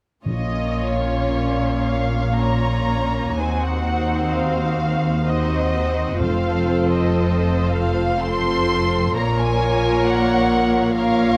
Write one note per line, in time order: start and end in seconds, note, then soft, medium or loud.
0.24 3.33 A#1 soft
0.24 3.33 A#2 soft
0.24 1.74 A#2 soft
0.24 2.29 A#3 soft
0.24 2.29 C#4 soft
0.24 2.30 F4 soft
0.24 2.30 C#5 soft
0.24 0.96 D#5 medium
1.01 1.78 C#5 soft
1.78 2.34 F5 medium
2.33 3.35 A#3 soft
2.33 3.35 C#4 soft
2.33 3.35 F4 soft
2.33 3.35 C#5 soft
2.33 3.37 A#5 medium
3.36 6.16 D#2 soft
3.36 5.23 C4 soft
3.36 5.24 D#4 soft
3.36 5.22 F#4 soft
3.36 5.25 C5 soft
3.36 3.61 G#5 medium
3.61 4.32 F#5 medium
4.34 5.26 F5 medium
5.25 6.18 C4 soft
5.25 6.18 D#4 soft
5.25 5.72 F#4 soft
5.25 6.18 C5 soft
5.25 6.20 D#5 medium
5.73 6.19 F#4 soft
6.19 9.12 F1 medium
6.19 9.11 F2 soft
6.19 7.63 F2 soft
6.19 8.15 C4 medium
6.19 8.15 F4 medium
6.19 8.19 A4 soft
6.19 8.16 C5 medium
6.19 6.90 F5 medium
6.92 7.65 D#5 medium
7.67 8.20 F5 medium
8.19 9.13 C4 soft
8.19 9.13 F4 soft
8.19 9.14 A4 medium
8.19 9.14 C5 medium
8.19 9.16 C6 medium
9.15 11.37 A#1 medium
9.15 11.37 A#2 medium
9.15 10.93 A#3 medium
9.15 10.91 F4 medium
9.15 10.94 A#4 medium
9.15 10.93 C#5 medium
9.15 9.38 A#5 medium
9.39 10.05 G#5 medium
10.05 10.94 F#5 medium
10.94 11.37 A#3 soft
10.94 11.37 F4 medium
10.94 11.37 A#4 medium
10.94 11.37 C#5 medium
10.94 11.37 F5 medium